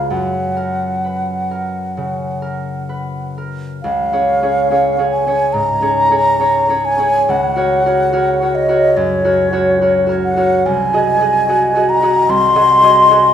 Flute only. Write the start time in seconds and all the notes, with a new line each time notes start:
0.10 F#5
3.83 F5
5.10 G#5
5.53 A#5
6.85 G#5
7.30 F#5
8.55 D#5
8.97 C#5
10.24 F#5
10.66 G#5
11.89 A#5
12.30 C6